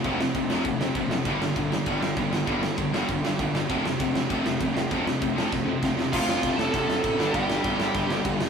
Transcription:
<<
  \new Staff \with { instrumentName = "Lead electric guitar" } { \time 4/4 \key f \mixolydian \tempo 4 = 197 r1 | r1 | r1 | r1 |
r1 | <f' f''>4. <a' a''>8 <a' a''>2 | <g' g''>2. r4 | }
  \new Staff \with { instrumentName = "Distorted electric guitar" } { \clef bass \time 4/4 \key f \mixolydian <f, c f a c'>2~ <f, c f a c'>8 <f, c f a c'>8 <f, c f a c'>4 | <g, d g bes d'>2~ <g, d g bes d'>8 <g, d g bes d'>8 <g, d g bes d'>4 | <g, d g bes d'>2~ <g, d g bes d'>8 <g, d g bes d'>8 <g, d g bes d'>4 | <f, c f a c'>2~ <f, c f a c'>8 <f, c f a c'>8 <f, c f a c'>4 |
<f, c f a c'>2~ <f, c f a c'>8 <f, c f a c'>8 <f, c f a c'>4 | <f, c f a c'>2.~ <f, c f a c'>8 <g, d g bes d'>8~ | <g, d g bes d'>2.~ <g, d g bes d'>8 r8 | }
  \new Staff \with { instrumentName = "Distorted electric guitar" } { \clef bass \time 4/4 \key f \mixolydian <f, c f>8 <f, c>8 <f, c>8 <f, c f>8 <f, c>8 <f, c>8 <f, c>8 <f, c>8 | <g, d g>8 <g, d>8 <g, d>8 <g, d>8 <g, d g>8 <g, d>8 <g, d>8 <g, d>8 | <g, d g>8 <g, d>8 <g, d>8 <g, d g>8 <g, d>8 <g, d>8 <g, d>8 <g, d>8 | <f, c f>8 <f, c>8 <f, c>8 <f, c>8 <f, c f>8 <f, c>8 <f, c>8 <f, c>8 |
<f, c f>8 <f, c>8 <f, c>8 <f, c f>8 <f, c>8 <f, c>8 <f, c>8 <f, c>8 | <f, c f>2.~ <f, c f>8 <g, d g>8~ | <g, d g>2.~ <g, d g>8 r8 | }
  \new Staff \with { instrumentName = "Overdriven electric guitar" } { \clef bass \time 4/4 \key f \mixolydian <f, c f>8 <f, c>8 <f, c>8 <f, c f>8 <f, c>8 <f, c>8 <f, c>8 <f, c>8 | <g, d g>8 <g, d>8 <g, d>8 <g, d>8 <g, d g>8 <g, d>8 <g, d>8 <g, d>8 | <g, d g>8 <g, d>8 <g, d>8 <g, d g>8 <g, d>8 <g, d>8 <g, d>8 <g, d>8 | <f, c f>8 <f, c>8 <f, c>8 <f, c>8 <f, c f>8 <f, c>8 <f, c>8 <f, c>8 |
<f, c f>8 <f, c>8 <f, c>8 <f, c f>8 <f, c>8 <f, c>8 <f, c>8 <f, c>8 | <f, c f>2.~ <f, c f>8 <g, d g>8~ | <g, d g>2.~ <g, d g>8 r8 | }
  \new Staff \with { instrumentName = "Picked electric bass" } { \clef bass \time 4/4 \key f \mixolydian f,,4 f,,8 f,,8 f,,8 f,8 f,,8 fis,,8 | g,,8 g,,8 g,,4 g,,8 g,,8 g,,8 g,,8 | g,,4 g,,8 g,,8 g,,8 g,8 g,,8 g,,8 | f,,8 f,,8 f,,4 f,,8 f,,8 f,,8 f,,8 |
f,,4 f,,8 f,,8 f,,8 f,8 f,,8 f,,8 | f,,8 f,,8 f,,8 f,,8 f,,8 f,,8 a,,8 g,,8 | g,,8 g,,8 g,,8 g,,8 g,,8 g,,8 g,,8 f,,8 | }
  \new DrumStaff \with { instrumentName = "Drums" } \drummode { \time 4/4 <cymc bd>8 sn8 <cymc bd>8 sn8 <cymc bd>8 sn8 <cymc bd>8 sn8 | <cymc bd>8 sn8 <cymc bd>8 sn8 <cymc bd>8 sn8 <cymc bd>8 sn8 | <cymc bd>8 sn8 <cymc bd>8 sn8 <cymc bd>8 sn8 <cymc bd>8 sn8 | <cymc bd>8 sn8 <cymc bd>8 sn8 <cymc bd>8 sn8 <cymc bd>8 sn8 |
<cymc bd>8 sn8 <cymc bd>8 sn8 <bd sn>4 <bd sn>8 sn8 | <cymc bd>8 sn8 <cymc bd>8 sn8 <cymc bd>8 sn8 <cymc bd>8 sn8 | <cymc bd>8 sn8 <cymc bd>8 sn8 <cymc bd>8 sn8 <cymc bd>8 sn8 | }
>>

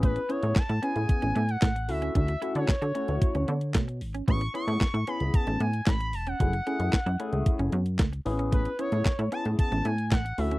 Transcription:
<<
  \new Staff \with { instrumentName = "Analog synth lead" } { \time 4/4 \key a \major \tempo 4 = 113 b'8 cis''8 a''8 gis''4~ gis''16 fis''8. e''8 | e''8. cis''2~ cis''8. r8 | cis'''8 cis'''4 b''8 a''8 gis''8 b''8 a''16 fis''16~ | fis''2~ fis''8. r4 r16 |
b'8 cis''4 a''8 a''8 gis''8 fis''8 e''8 | }
  \new Staff \with { instrumentName = "Tine electric piano" } { \time 4/4 \key a \major <b cis' e' gis'>8 <b cis' e' gis'>8 r8 <b cis' e' gis'>4 r4 <a cis' e' fis'>8~ | <a cis' e' fis'>8 <a cis' e' fis'>8 r8 <a cis' e' fis'>4 r4. | <b cis' e' gis'>16 r16 <b cis' e' gis'>8 r8 <b cis' e' gis'>4 r4. | <a cis' e' gis'>16 r16 <a cis' e' gis'>8 r8 <a cis' e' gis'>4 r4 <b cis' e' gis'>8~ |
<b cis' e' gis'>8 <b cis' e' gis'>8 r8 <b cis' e' gis'>4 r4 <a cis' e' fis'>8 | }
  \new Staff \with { instrumentName = "Clean electric guitar" } { \time 4/4 \key a \major a16 r16 cis'16 r8 e'16 cis'16 r8 cis'16 b16 r16 a16 r8 cis'16 | d'16 r16 e'16 r8 fis'16 cis'16 r8 cis'16 b16 r16 a16 r8 cis'16 | a16 r16 cis'16 r8 e'16 cis'16 r8 cis'16 b16 r16 a16 r8 cis'16 | fis16 r16 cis'16 r8 e'16 cis'16 r8 cis'16 b16 r16 a16 r8 cis'16 |
a16 r16 cis'16 r8 e'16 cis'16 r8 cis'16 b16 r16 a16 r8 cis'16 | }
  \new Staff \with { instrumentName = "Analog synth bass" } { \clef bass \time 4/4 \key a \major a,,8 r16 a,16 r16 a,16 r16 a,16 r16 a,,16 a,8 a,,8 d,8 | d,8 r16 d16 r16 d16 r16 d,16 r16 d,16 d8 b,8 gis,,8 | a,,8 r16 a,16 a,16 a,16 r16 cis,16 r16 a,,16 a,8 a,,8 e,,8 | fis,,8 r16 fis,16 r16 fis,16 r16 cis,16 r16 fis,,16 fis,8 cis,8 a,,8~ |
a,,8 r16 a,16 r16 a,16 r16 a,16 r16 a,,16 a,8 a,,8 d,8 | }
  \new DrumStaff \with { instrumentName = "Drums" } \drummode { \time 4/4 <hh bd>16 hh16 hh16 hh16 <hc hh bd sn>16 hh16 hh16 hh16 <hh bd>16 hh16 hh16 hh16 <hc hh bd sn>16 hh16 hho16 hh16 | <hh bd>16 hh16 hh16 hh16 <hc hh bd sn>16 hh16 hh16 hh16 <hh bd>16 hh16 hh16 hh16 <hc hh bd sn>16 hh16 hho16 hh16 | <hh bd>16 hh16 hh16 hh16 <hc hh bd sn>16 hh16 hh16 hh16 <hh bd>16 hh16 hh16 hh16 <hc hh bd sn>16 hh16 hho16 hh16 | <hh bd>16 hh16 hh16 hh16 <hc hh bd sn>16 hh16 hh16 hh16 <hh bd>16 hh16 hh16 hh16 <hc hh bd sn>16 hh16 hho16 hh16 |
<hh bd>16 hh16 hh16 hh16 <hc hh bd sn>16 hh16 hh16 hh16 <hh bd>16 hh16 hh16 hh16 <hc hh bd sn>16 hh16 hho16 hh16 | }
>>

